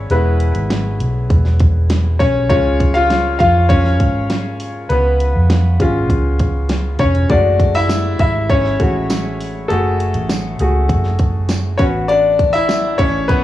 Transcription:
Already playing: grand piano G#3 B3 C#4 E4 C#5 E5
0.10 fingered electric bass E1, grand piano G#3 B3 E4 B4, closed hi-hat
0.40 closed hi-hat
0.55 fingered electric bass G#1, closed hi-hat
0.70 snare, closed hi-hat
1.00 fingered electric bass B1, closed hi-hat
1.30 fingered electric bass E1, kick, closed hi-hat
1.45 snare
1.59 kick, closed hi-hat
1.90 snare, closed hi-hat
2.19 fingered electric bass B1, grand piano C#4 C#5, kick, open hi-hat
2.49 fingered electric bass C#2, grand piano G#3 C#4 F4 C#5, kick, closed hi-hat
2.80 kick, closed hi-hat
2.94 grand piano F4 F5, closed hi-hat
3.10 snare, closed hi-hat
3.39 fingered electric bass F2, grand piano F4 F5, kick, closed hi-hat
3.69 grand piano C#4 C#5, kick, closed hi-hat
3.85 snare
4.00 fingered electric bass G#2, kick, closed hi-hat
4.30 snare, closed hi-hat
4.60 open hi-hat
4.89 fingered electric bass C#2, grand piano B3 B4, closed hi-hat
5.20 closed hi-hat
5.36 fingered electric bass F2
5.50 snare, closed hi-hat
5.80 fingered electric bass G#1, grand piano G#3 C#4 F4, kick, closed hi-hat
6.09 fingered electric bass C#2, kick, closed hi-hat
6.39 kick, closed hi-hat
6.69 snare, closed hi-hat
6.99 fingered electric bass F1, grand piano C#4 C#5, kick, open hi-hat
7.15 closed hi-hat
7.30 fingered electric bass F#1, grand piano G#3 A3 D4 F#4 D5, kick, closed hi-hat
7.60 kick, closed hi-hat
7.75 grand piano E4 E5, closed hi-hat
7.90 snare, closed hi-hat, tambourine
8.19 fingered electric bass G#1, grand piano E4 E5, kick, closed hi-hat
8.50 grand piano C#4 C#5, kick, closed hi-hat
8.65 snare
8.80 fingered electric bass A1, grand piano G#3 A3 F#4, kick, closed hi-hat
9.10 snare, closed hi-hat, tambourine
9.40 open hi-hat
9.68 fingered electric bass F#1, grand piano A3 F#4 G#4 A4, closed hi-hat
10.00 closed hi-hat
10.14 fingered electric bass A1, closed hi-hat
10.29 snare, closed hi-hat, tambourine
10.59 fingered electric bass C#2, grand piano A3 F#4 G#4, closed hi-hat
10.89 fingered electric bass F#1, kick, closed hi-hat
11.04 snare
11.19 kick, closed hi-hat
11.49 snare, closed hi-hat, tambourine
11.78 fingered electric bass A1, grand piano B3 C#4 F#4 C#5, kick, open hi-hat
12.08 grand piano D4 D5, closed hi-hat
12.39 kick, closed hi-hat
12.53 grand piano E4 E5, closed hi-hat
12.69 snare, closed hi-hat, tambourine
12.98 fingered electric bass A1, grand piano C#4 C#5, kick, closed hi-hat
13.28 grand piano B3 B4, kick, closed hi-hat

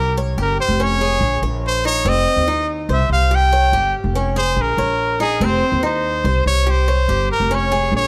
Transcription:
Already playing: upright bass C2, cuban tres G4, trumpet A#4
0.17 cuban tres C#5
0.38 upright bass G1, cuban tres G4, trumpet A#4
0.60 trumpet C5
0.68 upright bass F1
0.80 cuban tres C#4, trumpet C#5
1.01 cuban tres G#4
1.21 upright bass A#1
1.42 upright bass A#1, cuban tres C#5
1.67 trumpet C5
1.85 cuban tres D#4, trumpet C#5
2.05 upright bass F1, cuban tres C4, trumpet D#5
2.36 upright bass D#2
2.48 cuban tres D#4
2.89 upright bass C2, cuban tres C5
2.93 trumpet E5
3.10 upright bass C2, trumpet F5
3.31 cuban tres G4, trumpet G5
3.53 cuban tres C#5
3.72 upright bass G1, cuban tres G4
4.04 upright bass F1
4.16 cuban tres C#4
4.36 cuban tres G#4, trumpet C5
4.56 upright bass A#1
4.61 trumpet A#4
4.78 upright bass A#1, cuban tres C#5
5.20 cuban tres D#4, trumpet G#4
5.41 upright bass F1, cuban tres C4, trumpet C5
5.72 upright bass D#2
5.83 cuban tres D#4, trumpet C5
6.24 upright bass C2, cuban tres C5
6.46 upright bass C2, trumpet C#5
6.67 cuban tres G4, trumpet C5
6.88 cuban tres C#5
7.08 upright bass G1, cuban tres G4
7.32 trumpet A#4
7.40 upright bass F1
7.51 cuban tres C#4, trumpet C#5
7.72 cuban tres G#4
7.92 upright bass A#1
7.97 trumpet C#5

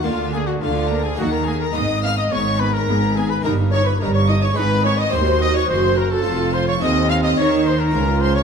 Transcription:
0.03 double bass section D2, cello section D3, harpsichord D3 A#3 F4, viola section A#3, trumpet F4, violin section F4 F5
0.33 viola section A#3, violin section G#4 G#5, trumpet G#4
0.47 violin section F#4 F#5, trumpet F#4
0.61 double bass section D2, cello section D3, harpsichord D3, viola section A#3, violin section F4 F5, trumpet F4
0.90 viola section A#3, violin section A#4 A#5, trumpet A#4
1.04 violin section G#4 G#5, trumpet G#4
1.14 harpsichord A#3 D#4
1.18 double bass section D#2, cello section D#3, harpsichord D#3, viola section A#3, trumpet F#4, violin section F#4 F#5
1.32 trumpet A#4, violin section A#4 A#5
1.46 viola section A#3, trumpet G#4, violin section G#4 G#5
1.60 trumpet A#4, violin section A#4 A#5
1.71 harpsichord B3 D#4, trumpet D#5
1.75 double bass section G#1, harpsichord G#2, cello section G#2, viola section B3, violin section D#5 D#6
2.03 viola section B3, trumpet F5, violin section F5 F6
2.18 trumpet D#5, violin section D#5 D#6
2.31 double bass section G#1, harpsichord G#2, cello section G#2, viola section B3, trumpet C#5, violin section C#5 C#6
2.60 viola section B3, violin section B4 B5, trumpet B4
2.74 violin section A#4 A#5, trumpet A#4
2.88 double bass section G#1, cello section G#2, harpsichord G#2, viola section B3
3.16 viola section B3, violin section G#4 G#5, trumpet G#4
3.30 trumpet B4, violin section B4 B5
3.41 double bass section G1, cello section G2, harpsichord A#3 D#4, viola section D#4, violin section A#4 A#5, trumpet A#4
3.45 harpsichord G2
3.72 viola section D#4, violin section C#5 C#6, trumpet C#5
3.86 violin section B4 B5, trumpet B4
4.00 double bass section G1, cello section G2, harpsichord G2, viola section D#4, violin section A#4 A#5, trumpet A#4
4.14 violin section C#5 C#6, trumpet C#5
4.28 viola section D#4, trumpet D#5, violin section D#5 D#6
4.43 trumpet C#5, violin section C#5 C#6
4.53 harpsichord G#3 D#4, viola section D#4, trumpet B4, violin section B4 B5
4.57 double bass section G#1, cello section G#2, harpsichord G#2
4.85 viola section D#4, violin section C#5 C#6, trumpet C#5
4.99 trumpet D#5, violin section D#5 D#6
5.09 harpsichord C4 D#4 F#4, viola section F#4, trumpet C5, violin section C5 C6
5.13 double bass section D#2, cello section D#2, harpsichord D#2
5.41 trumpet D#5, violin section D#5 D#6
5.55 trumpet C#5, violin section C#5 C#6
5.69 double bass section F#1, harpsichord F#2, cello section F#2, violin section C5 C6, trumpet C5
5.97 violin section A#4 A#5, trumpet A#4
6.12 violin section A4 A5, trumpet A4
6.22 double bass section F1, harpsichord C4 F4, viola section F4
6.26 cello section F2, harpsichord F2
6.54 violin section C5 C6, trumpet C5
6.67 trumpet C#5, violin section C#5 C#6
6.78 double bass section D#2, cello section D#2, harpsichord A3 C4 F4, viola section C4, violin section D#5, trumpet D#5
6.83 harpsichord D#2, violin section D#6
7.10 violin section F5 F6, trumpet F5
7.23 trumpet D#5, violin section D#5 D#6
7.38 double bass section D#2, harpsichord D#3, cello section D#3, viola section D#4, trumpet C#5, violin section C#5 C#6
7.66 trumpet C5, violin section C5 C6
7.79 trumpet A#4, violin section A#4 A#5
7.90 double bass section C#2, harpsichord A#3 F4, viola section F4
7.95 cello section C#2, harpsichord C#2
8.21 trumpet C5, violin section C5 C6
8.35 trumpet C#5, violin section C#5 C#6

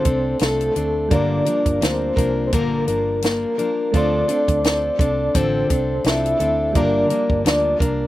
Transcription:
Already playing: synth keys A3 D4 F4 C5, soft synth lead C5
0.05 fingered electric bass C2, steel-string acoustic guitar C4 D4 A4, kick, closed hi-hat
0.39 fingered electric bass C2, steel-string acoustic guitar F3 C4 D4 A4, soft synth lead A4, snare, closed hi-hat
0.61 closed hi-hat
0.75 fingered electric bass D2, steel-string acoustic guitar C4 D4 A4, closed hi-hat
1.09 fingered electric bass G1, steel-string acoustic guitar G2 D3 F3 A#3 D4 A#4, synth keys G3 D4 F4, kick, closed hi-hat
1.13 synth keys A#4, soft synth lead D5
1.45 steel-string acoustic guitar F3 A#3 D4 A#4, closed hi-hat
1.66 fingered electric bass G1, kick, closed hi-hat
1.81 fingered electric bass D2, steel-string acoustic guitar F3 A#3 D4 A#4, soft synth lead C5, snare, closed hi-hat
2.16 fingered electric bass C2, steel-string acoustic guitar F3 A#3 D4 A#4, kick, closed hi-hat
2.47 soft synth lead C5
2.53 fingered electric bass A#1, steel-string acoustic guitar G2 D3 F3 A#3 D4 A#4, soft synth lead A#4, kick, closed hi-hat
2.87 fingered electric bass G1, steel-string acoustic guitar F3 A#3 D4 A#4, closed hi-hat
3.22 steel-string acoustic guitar F3 A#3 D4 A#4, soft synth lead A#4, snare, closed hi-hat
3.58 steel-string acoustic guitar F3 A#3 D4 A#4, closed hi-hat
3.92 fingered electric bass D2, steel-string acoustic guitar D3 F3 C4 D4 A4, synth keys A3 D4 F4, soft synth lead D5, kick, closed hi-hat
3.97 synth keys C5
4.28 steel-string acoustic guitar C4 D4 A4, closed hi-hat
4.48 fingered electric bass D2, kick, closed hi-hat
4.64 steel-string acoustic guitar F3 C4 D4 A4, snare, closed hi-hat
4.99 fingered electric bass C2, steel-string acoustic guitar C4 D4 A4, soft synth lead D5, kick, closed hi-hat
5.34 fingered electric bass A1, steel-string acoustic guitar D3 F3 C4 D4 A4, soft synth lead C5, kick, closed hi-hat
5.70 fingered electric bass C2, steel-string acoustic guitar C4 D4 A4, kick, closed hi-hat
6.04 fingered electric bass C2, steel-string acoustic guitar F3 C4 D4 A4, soft synth lead E5, snare, closed hi-hat
6.26 closed hi-hat
6.40 fingered electric bass D2, steel-string acoustic guitar C4 D4 A4, closed hi-hat
6.73 fingered electric bass G1, steel-string acoustic guitar G2 D3 F3 A#3 D4 A#4, synth keys G3 D4 F4, soft synth lead D5, kick, closed hi-hat
6.78 synth keys A#4
7.10 steel-string acoustic guitar F3 A#3 D4 A#4, closed hi-hat
7.30 fingered electric bass G1, kick
7.45 fingered electric bass D2, steel-string acoustic guitar F3 A#3 D4 A#4, soft synth lead D5, snare, closed hi-hat
7.79 fingered electric bass C2, steel-string acoustic guitar F3 A#3 D4 A#4, soft synth lead A#4, kick, closed hi-hat

